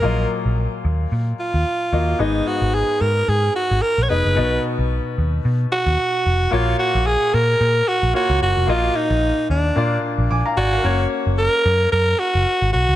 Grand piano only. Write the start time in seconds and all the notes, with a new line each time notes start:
0.02 A#2 F#3 A#3 F4 D#5
1.92 A#3 F4 F#4 D#5
2.19 G#2 B3 D#4 G#4 D#5
4.09 B3 D#4 G#4 D#5
4.35 B2 B3 D#4 F#4 D#5
6.51 A#2 A#3 F4 F#4 C#5
8.14 A#3 F4 F#4 C#5
8.67 A#2 A#3 F4 F#4 D#5
9.75 A#2 A#3 D4 F4 D5
10.31 G#5 D6
10.46 F5 A#5
10.57 D5 G#5
10.72 A#4 F5
10.83 A#3 C#4 F#4 C#5